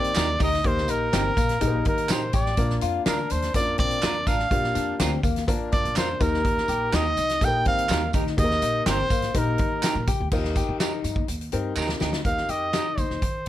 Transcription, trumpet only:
Already playing: D5
0.43 D#5
0.67 C5
0.90 A#4
1.89 A#4
2.12 C5
2.35 D5
3.07 A#4
3.31 C5
3.55 D5
3.79 D5
4.27 F5
5.72 D5
5.98 C5
6.21 A#4
6.95 D#5
7.45 G5
7.67 F5
8.39 D#5
8.90 C5
9.38 A#4
12.25 F5
12.50 D#5
12.99 C5

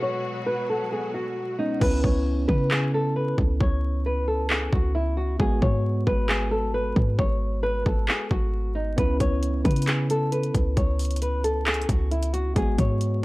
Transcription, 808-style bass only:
1.81 C#2
2.04 C#2
2.49 C#3
3.38 C#2
3.61 C#2
4.73 C#2
5.40 G#1
5.62 G#2
6.07 G#1
6.96 G#2
7.19 G#1
7.86 G#1
8.31 G#1
8.98 C#2
9.20 C#2
9.65 C#3
10.55 C#2
10.77 C#2
11.89 C#2
12.56 G#1
12.79 G#2

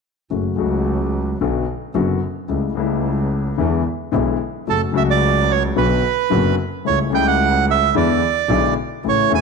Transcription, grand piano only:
0.30 F#2 C#3 F#3 A3 F#4
0.56 C#2 C#3 F#3 A3 F#4
1.41 B1 B2 D3 F#3 B3 F#4
1.94 F#1 F#2 D3 F#3 B3 F#4
2.48 C#2 C#3 G3 A3 E4
2.75 C#2 C#3 G3 A3
2.79 E4
3.57 E2 D3 E3 G#3 B3 E4
4.12 B1 B2 D3 G#3 B3 E4
4.67 F#2 C#3 F#3 A3 F#4
4.93 C#2 C#3 F#3 A3 F#4
5.76 B1 B2 D3 F#3 B3 F#4
6.30 F#1 F#2 D3 F#3 B3 F#4
6.85 C#2 C#3 G3 A3 E4
7.12 C#2 C#3 G3 A3 E4
7.95 E2 D3 E3 G#3 B3 E4
8.50 B1 B2 D3 G#3 B3 E4
9.04 A1 A2 C#3 E3 A3 E4
9.30 E1 E2 C#3 E3 A3 E4

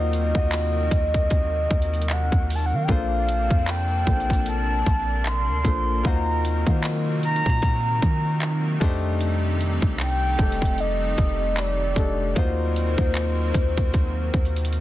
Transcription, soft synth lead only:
Already playing: D#5
2.13 F#5
2.55 A5
2.66 F#5
2.75 F5
2.83 F#5 G5
2.91 F5
3.70 G5
4.49 A5
5.28 C6
6.07 A#5
7.25 A#5
10.01 G5
10.80 D#5
11.59 D5
12.37 C5

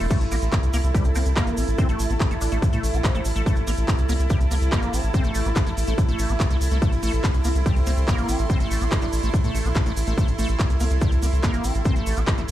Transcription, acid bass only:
0.00 A3
0.11 A3
0.32 A#3
0.53 A#3
0.74 A#3
0.95 G3
1.15 A#3
1.36 A#3
1.57 C4
1.78 C4
1.89 A3
2.10 C4
2.31 A3
2.52 A3
2.73 A3
2.94 C4
3.15 A3
3.36 A3
3.46 A3
3.67 A#3
3.88 A#3
4.09 A#3
4.30 G3
4.51 A#3
4.72 A#3
4.93 C4
5.14 C4
5.25 A3
5.46 C4
5.67 A3
5.88 A3
6.09 A3
6.29 C4
6.50 A3
6.71 A3
6.82 A3
7.03 A3
7.24 A#3
7.45 A#3
7.66 G3
7.87 A#3
8.08 A#3
8.29 C4
8.50 C4
8.60 A3
8.81 C4
9.02 A3
9.23 A3
9.44 A3
9.65 C4
9.86 A3
10.07 A3
10.18 A3
10.39 A3
10.60 A#3
10.81 A#3
11.02 G3
11.23 A#3
11.43 A#3
11.64 C4
11.85 C4
11.96 A3
12.17 C4
12.38 A3

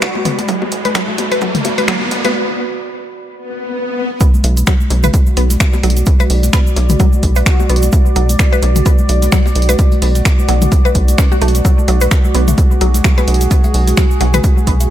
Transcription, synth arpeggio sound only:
0.25 B3
0.48 F#3
0.85 B4
0.95 F#3
1.32 B4
1.42 F#3
1.78 B4
1.88 F#3
2.25 B4
4.21 B3
4.67 F#3
5.04 B4
5.37 B3
5.83 F#3
6.20 B4
6.53 B3
7.00 F#3
7.36 B4
7.69 B3
8.16 F#3
8.53 B4
8.86 B3
9.32 F#3
9.69 B4
10.02 B3
10.49 F#3
10.85 B4
11.18 C#4
11.32 F#4
11.42 A3
11.65 F#3
11.88 F#3
12.01 B4
12.35 B3
12.81 F#3
13.04 F#3
13.18 B4
13.51 B3
13.97 F#3
14.21 F#3
14.34 B4
14.67 B3

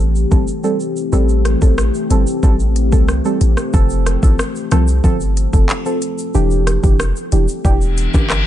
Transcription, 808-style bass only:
Already playing: A1
0.32 G1
1.13 A1
1.62 A1
2.10 G1
2.43 A1
2.92 C2
3.41 A1
3.74 F1
4.23 A1
4.72 C2
5.04 G1
5.53 F1
6.35 E1
6.84 F1
7.32 E1
7.65 E1
8.14 G1

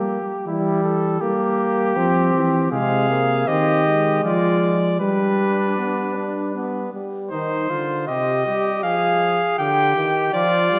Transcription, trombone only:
Already playing: A#3
0.46 G3
1.21 A#3
1.97 C4
2.72 G#3
3.09 A#3
3.48 C4
3.86 G#3
5.00 G3
5.78 B3
6.17 D4
6.55 B3
6.94 G3
7.32 D#3
7.70 D3
8.08 C3
8.46 G3
8.84 F3
9.59 D3
9.96 D#3
10.34 F3
10.71 G3

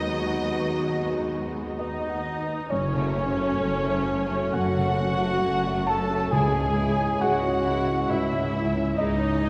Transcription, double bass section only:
Already playing: D#2
2.72 F#1
3.61 F#1
4.55 F#1
5.44 F#1
6.33 C#2
7.22 C#2
8.11 C#2
8.99 C#2

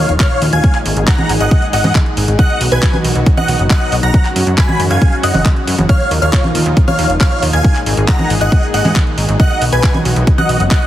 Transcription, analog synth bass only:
0.09 D#1
0.42 D#2
0.53 D#2
0.86 G#1
0.97 G#1
1.30 G#1
1.41 G#1
1.73 G#1
1.84 G#2
2.17 G#1
2.28 G#1
2.61 B1
2.72 B1
3.05 B1
3.16 B1
3.48 B1
3.59 F#1
3.92 B1
4.03 B1
4.36 F#2
4.47 F#2
4.80 F#2
4.91 F#2
5.23 F#2
5.34 F#1
5.67 F#2
5.78 F#1
6.11 D#2
6.22 D#2
6.55 D#2
6.66 D#2
6.99 D#2
7.10 D#1
7.43 D#2
7.54 D#2
7.86 G#1
7.97 G#1
8.30 G#1
8.41 G#1
8.74 G#1
8.85 G#2
9.18 G#1
9.29 G#1
9.62 B1
9.73 B1
10.05 B1
10.16 B1
10.49 B1
10.60 F#1

